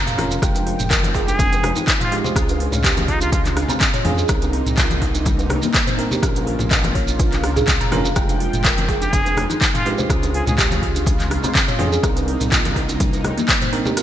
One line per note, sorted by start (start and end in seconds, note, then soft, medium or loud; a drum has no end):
0.00 0.38 F1 medium
0.00 0.40 C#3 medium
0.00 0.38 A#3 medium
0.00 0.15 C#4 medium
0.00 0.15 F4 medium
0.00 0.41 F4 medium
0.00 0.15 A#4 medium
0.07 0.17 F5 loud
0.07 closed hi-hat soft
0.07 mid tom medium
0.07 shekere soft
0.18 0.40 C#4 medium
0.18 0.40 F4 medium
0.18 0.40 A#4 medium
0.18 cross-stick medium
0.18 open hi-hat medium
0.18 high conga loud
0.18 low conga loud
0.31 0.41 A#4 medium
0.31 closed hi-hat soft
0.31 shekere medium
0.42 0.74 F1 loud
0.42 2.34 F3 medium
0.42 4.25 G#3 medium
0.42 2.09 G#3 medium
0.42 2.09 F4 medium
0.42 2.34 G5 medium
0.42 2.09 G5 medium
0.42 kick loud
0.42 cross-stick medium
0.42 closed hi-hat medium
0.42 shekere medium
0.55 closed hi-hat soft
0.55 djembe tone medium
0.55 shekere soft
0.67 0.79 F4 medium
0.67 open hi-hat medium
0.79 1.71 F1 medium
0.79 closed hi-hat soft
0.79 mid tom medium
0.79 shekere medium
0.90 1.03 A#4 loud
0.90 kick loud
0.90 clap loud
0.90 closed hi-hat medium
0.90 djembe slap medium
0.90 shekere medium
1.03 closed hi-hat soft
1.03 high conga loud
1.03 shekere soft
1.14 1.26 G#4 medium
1.14 kick medium
1.14 open hi-hat medium
1.14 djembe slap loud
1.28 1.76 G#4 loud
1.28 closed hi-hat soft
1.28 djembe bass loud
1.28 shekere medium
1.39 1.51 C4 medium
1.39 kick loud
1.39 closed hi-hat medium
1.39 high conga loud
1.39 djembe tone medium
1.39 shekere medium
1.52 closed hi-hat soft
1.52 djembe tone medium
1.52 shekere soft
1.63 cross-stick medium
1.63 open hi-hat medium
1.63 djembe tone medium
1.63 low conga loud
1.76 1.86 D#4 loud
1.76 closed hi-hat soft
1.76 high conga medium
1.76 shekere medium
1.87 kick loud
1.87 clap loud
1.87 closed hi-hat medium
1.87 shekere medium
2.00 2.16 F4 loud
2.00 2.11 F5 medium
2.00 closed hi-hat soft
2.00 mid tom medium
2.00 high conga medium
2.00 shekere soft
2.12 2.33 G#3 medium
2.12 2.33 F4 medium
2.12 2.33 G4 medium
2.12 open hi-hat medium
2.12 djembe tone medium
2.24 2.35 C5 medium
2.24 low conga medium
2.24 shekere medium
2.36 2.68 C#2 loud
2.36 4.27 C#3 medium
2.36 4.03 C#4 medium
2.36 4.27 F4 loud
2.36 4.03 F4 medium
2.36 4.03 G#4 medium
2.36 kick loud
2.36 cross-stick medium
2.36 closed hi-hat medium
2.36 shekere medium
2.48 closed hi-hat soft
2.48 djembe tone medium
2.48 shekere soft
2.60 2.72 C#4 medium
2.60 open hi-hat medium
2.72 3.65 C#2 medium
2.72 closed hi-hat soft
2.72 mid tom medium
2.72 low conga medium
2.72 shekere medium
2.84 2.96 G4 loud
2.84 kick loud
2.84 clap loud
2.84 closed hi-hat medium
2.84 djembe slap loud
2.84 shekere medium
2.97 closed hi-hat soft
2.97 high conga loud
2.97 low conga loud
2.97 shekere soft
3.08 3.19 D#4 loud
3.08 3.20 F4 medium
3.08 kick medium
3.08 open hi-hat medium
3.21 3.28 F4 medium
3.21 closed hi-hat soft
3.21 djembe bass medium
3.21 shekere medium
3.32 3.44 G#3 medium
3.32 3.41 F4 medium
3.32 kick loud
3.32 closed hi-hat medium
3.32 djembe tone medium
3.32 shekere medium
3.45 clap soft
3.45 closed hi-hat soft
3.45 high conga medium
3.45 shekere soft
3.56 cross-stick medium
3.56 open hi-hat loud
3.56 djembe tone medium
3.56 djembe bass loud
3.69 3.80 C4 loud
3.69 closed hi-hat soft
3.69 djembe tone medium
3.69 low conga medium
3.69 shekere medium
3.80 kick loud
3.80 clap loud
3.80 closed hi-hat medium
3.80 high conga medium
3.80 shekere medium
3.94 4.04 C#5 medium
3.94 closed hi-hat soft
3.94 mid tom medium
3.94 shekere soft
4.05 4.24 F2 medium
4.05 4.27 C#4 medium
4.05 4.27 F4 medium
4.05 4.27 G#4 medium
4.05 open hi-hat medium
4.05 high conga loud
4.05 djembe tone medium
4.05 low conga loud
4.18 4.29 G#4 medium
4.18 shekere medium
4.28 4.61 C2 loud
4.28 6.21 C3 medium
4.28 8.13 A#3 medium
4.28 5.96 C4 medium
4.28 5.96 D#4 medium
4.28 6.21 D#4 medium
4.28 5.96 A#4 medium
4.28 kick loud
4.28 cross-stick loud
4.28 closed hi-hat medium
4.28 shekere medium
4.42 closed hi-hat soft
4.42 djembe tone loud
4.42 shekere soft
4.53 4.66 C4 medium
4.53 open hi-hat medium
4.66 5.58 C2 medium
4.66 closed hi-hat soft
4.66 mid tom medium
4.66 shekere medium
4.77 4.90 F4 loud
4.77 kick loud
4.77 clap medium
4.77 closed hi-hat medium
4.77 djembe slap medium
4.77 shekere medium
4.90 closed hi-hat soft
4.90 high conga loud
4.90 shekere soft
5.02 5.13 D#4 medium
5.02 kick medium
5.02 open hi-hat medium
5.02 djembe slap medium
5.15 closed hi-hat soft
5.15 djembe bass medium
5.15 shekere medium
5.26 5.38 G3 medium
5.26 kick loud
5.26 closed hi-hat medium
5.26 high conga medium
5.26 djembe tone medium
5.26 shekere medium
5.39 closed hi-hat soft
5.39 djembe tone loud
5.39 shekere soft
5.49 cross-stick medium
5.49 open hi-hat loud
5.49 djembe tone medium
5.49 low conga loud
5.62 5.73 A#3 loud
5.62 closed hi-hat soft
5.62 high conga medium
5.62 shekere medium
5.74 kick loud
5.74 clap loud
5.74 closed hi-hat medium
5.74 shekere medium
5.87 5.97 C5 medium
5.87 closed hi-hat soft
5.87 mid tom loud
5.87 high conga medium
5.87 shekere soft
5.97 6.20 C4 medium
5.97 6.20 D#4 medium
5.97 6.20 A#4 medium
5.97 open hi-hat medium
5.97 djembe tone loud
6.11 6.22 G4 medium
6.11 low conga loud
6.11 shekere medium
6.23 6.55 A#1 loud
6.23 8.15 C#3 medium
6.23 7.90 C#4 medium
6.23 7.90 F4 medium
6.23 8.15 F4 medium
6.23 7.90 A#4 medium
6.23 kick loud
6.23 cross-stick medium
6.23 closed hi-hat medium
6.23 shekere medium
6.35 closed hi-hat soft
6.35 djembe tone loud
6.35 shekere soft
6.47 6.59 A#4 medium
6.47 open hi-hat medium
6.59 7.45 A#1 medium
6.59 closed hi-hat soft
6.59 mid tom medium
6.59 low conga medium
6.59 shekere medium
6.71 6.83 D#5 loud
6.71 kick loud
6.71 clap loud
6.71 closed hi-hat medium
6.71 djembe slap medium
6.71 shekere medium
6.83 closed hi-hat soft
6.83 high conga loud
6.83 low conga medium
6.83 shekere soft
6.95 7.07 C#5 medium
6.95 kick medium
6.95 open hi-hat medium
7.08 closed hi-hat soft
7.08 djembe bass medium
7.08 shekere medium
7.19 7.31 F4 medium
7.19 kick loud
7.19 closed hi-hat medium
7.19 djembe tone medium
7.19 shekere medium
7.32 clap soft
7.32 closed hi-hat soft
7.32 high conga medium
7.32 shekere soft
7.43 7.62 C#2 medium
7.43 cross-stick medium
7.43 open hi-hat medium
7.43 djembe tone medium
7.43 djembe bass medium
7.56 7.67 G#4 loud
7.56 closed hi-hat soft
7.56 mid tom medium
7.56 djembe tone medium
7.56 low conga medium
7.56 shekere medium
7.68 7.78 C#2 loud
7.68 kick loud
7.68 clap loud
7.68 closed hi-hat medium
7.68 high conga medium
7.68 shekere medium
7.81 8.12 F1 medium
7.81 7.91 A#5 medium
7.81 closed hi-hat soft
7.81 mid tom medium
7.81 shekere soft
7.92 8.06 C#4 loud
7.92 8.06 F4 medium
7.92 8.06 A#4 loud
7.92 cross-stick medium
7.92 open hi-hat medium
7.92 djembe tone loud
7.92 high conga loud
7.92 low conga loud
8.05 8.16 F5 medium
8.05 shekere medium
8.16 8.48 F1 loud
8.16 10.08 F3 medium
8.16 9.83 G#3 medium
8.16 12.00 G#3 medium
8.16 9.83 F4 medium
8.16 9.83 G5 medium
8.16 10.08 G5 medium
8.16 kick loud
8.16 cross-stick medium
8.16 closed hi-hat medium
8.16 shekere medium
8.29 closed hi-hat soft
8.29 djembe tone loud
8.29 shekere soft
8.40 8.53 F4 medium
8.40 open hi-hat medium
8.53 9.45 F1 medium
8.53 closed hi-hat soft
8.53 mid tom medium
8.53 shekere medium
8.64 8.77 A#4 loud
8.64 kick loud
8.64 clap loud
8.64 closed hi-hat medium
8.64 djembe slap medium
8.64 shekere medium
8.78 closed hi-hat soft
8.78 high conga loud
8.78 shekere soft
8.88 9.00 G#4 medium
8.88 kick medium
8.88 open hi-hat medium
8.88 djembe slap medium
9.02 9.50 G#4 loud
9.02 closed hi-hat soft
9.02 djembe bass medium
9.02 shekere medium
9.13 9.25 C4 medium
9.13 kick loud
9.13 closed hi-hat medium
9.13 djembe tone medium
9.13 high conga medium
9.13 shekere medium
9.25 closed hi-hat soft
9.25 djembe tone loud
9.25 shekere soft
9.37 cross-stick medium
9.37 open hi-hat medium
9.37 djembe tone medium
9.37 low conga loud
9.50 9.60 D#4 loud
9.50 closed hi-hat soft
9.50 high conga medium
9.50 shekere medium
9.61 kick loud
9.61 clap loud
9.61 closed hi-hat medium
9.61 shekere medium
9.74 9.90 F4 loud
9.74 9.84 F5 medium
9.74 closed hi-hat soft
9.74 mid tom loud
9.74 high conga medium
9.74 shekere soft
9.86 10.07 G#3 medium
9.86 10.07 F4 medium
9.86 10.07 G4 medium
9.86 open hi-hat medium
9.86 djembe tone medium
9.98 10.09 C5 medium
9.98 low conga loud
9.98 shekere medium
10.10 10.42 C#2 loud
10.10 12.02 C#3 medium
10.10 11.77 C#4 medium
10.10 11.77 F4 medium
10.10 12.02 F4 loud
10.10 11.77 G#4 medium
10.10 kick loud
10.10 cross-stick medium
10.10 closed hi-hat medium
10.10 shekere medium
10.23 closed hi-hat soft
10.23 djembe tone loud
10.23 shekere soft
10.33 10.46 C#4 medium
10.33 10.43 G#4 medium
10.33 open hi-hat medium
10.47 11.39 C#2 medium
10.47 10.54 G#4 medium
10.47 closed hi-hat soft
10.47 mid tom medium
10.47 low conga medium
10.47 shekere medium
10.58 10.71 G4 loud
10.58 kick loud
10.58 clap loud
10.58 closed hi-hat medium
10.58 djembe slap medium
10.58 shekere medium
10.71 closed hi-hat soft
10.71 high conga loud
10.71 low conga medium
10.71 shekere soft
10.82 10.94 F4 medium
10.82 kick medium
10.82 open hi-hat medium
10.95 closed hi-hat soft
10.95 djembe bass medium
10.95 shekere medium
11.06 11.18 G#3 medium
11.06 kick loud
11.06 closed hi-hat medium
11.06 djembe tone medium
11.06 shekere medium
11.19 clap soft
11.19 closed hi-hat soft
11.19 high conga medium
11.19 shekere soft
11.30 cross-stick medium
11.30 open hi-hat medium
11.30 djembe tone medium
11.30 djembe bass medium
11.44 11.54 C4 loud
11.44 closed hi-hat soft
11.44 djembe tone medium
11.44 low conga medium
11.44 shekere medium
11.55 kick loud
11.55 clap loud
11.55 closed hi-hat medium
11.55 high conga medium
11.55 shekere medium
11.68 11.78 C#5 medium
11.68 closed hi-hat soft
11.68 mid tom loud
11.68 shekere soft
11.79 11.98 F2 medium
11.79 12.01 C#4 medium
11.79 12.01 F4 medium
11.79 12.01 G#4 loud
11.79 open hi-hat medium
11.79 djembe tone loud
11.79 high conga loud
11.79 low conga loud
11.92 12.03 G#4 medium
11.92 shekere medium
12.03 12.35 C2 loud
12.03 13.95 C3 medium
12.03 13.95 A#3 medium
12.03 13.70 C4 medium
12.03 13.70 D#4 medium
12.03 13.95 D#4 medium
12.03 13.70 A#4 medium
12.03 kick loud
12.03 cross-stick medium
12.03 closed hi-hat medium
12.03 shekere medium
12.17 closed hi-hat soft
12.17 djembe tone medium
12.17 shekere soft
12.28 12.40 C4 medium
12.28 open hi-hat medium
12.41 13.32 C2 medium
12.41 closed hi-hat soft
12.41 mid tom medium
12.41 shekere medium
12.52 12.64 F4 loud
12.52 kick loud
12.52 clap loud
12.52 closed hi-hat medium
12.52 djembe slap medium
12.52 shekere medium
12.65 closed hi-hat soft
12.65 high conga loud
12.65 shekere soft
12.76 12.88 D#4 medium
12.76 kick medium
12.76 open hi-hat medium
12.76 djembe slap medium
12.89 closed hi-hat soft
12.89 djembe bass medium
12.89 shekere medium
12.99 13.12 G3 medium
12.99 kick loud
12.99 closed hi-hat medium
12.99 djembe tone medium
12.99 high conga medium
12.99 shekere medium
13.13 closed hi-hat soft
13.13 djembe tone medium
13.13 shekere soft
13.24 cross-stick medium
13.24 open hi-hat medium
13.24 djembe tone medium
13.24 low conga loud
13.38 13.48 A#3 loud
13.38 closed hi-hat soft
13.38 high conga medium
13.38 shekere medium
13.48 kick loud
13.48 clap loud
13.48 closed hi-hat medium
13.48 shekere medium
13.62 13.72 C5 medium
13.62 closed hi-hat soft
13.62 mid tom loud
13.62 high conga medium
13.62 shekere soft
13.73 13.94 C4 medium
13.73 13.94 D#4 medium
13.73 13.94 A#4 medium
13.73 open hi-hat medium
13.73 djembe tone medium
13.86 13.96 G4 medium
13.86 low conga loud
13.86 shekere medium
13.97 14.03 C#3 medium
13.97 14.03 A#3 medium
13.97 14.03 C#4 medium
13.97 14.03 F4 medium
13.97 14.03 A#4 medium
13.97 cross-stick medium
13.97 closed hi-hat medium
13.97 shekere medium